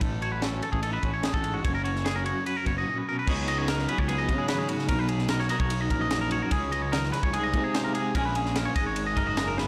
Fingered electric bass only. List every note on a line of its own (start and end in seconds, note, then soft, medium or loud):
0.01 0.60 A1 medium
0.73 0.98 A1 medium
1.03 1.28 A1 medium
1.34 1.59 A1 medium
1.65 2.32 F#1 medium
2.66 2.83 F#1 medium
3.27 3.86 C#2 medium
3.99 4.30 C#2 medium
4.28 4.91 C#3 medium
4.89 5.48 B1 loud
5.60 5.90 B1 loud
5.90 6.41 A#1 medium
6.51 7.11 C#2 medium
7.23 7.32 C#2 medium
7.34 7.55 C2 loud
7.54 8.17 C3 medium
8.15 8.66 A#1 medium
8.76 9.17 G#1 medium
9.17 9.68 F#1 medium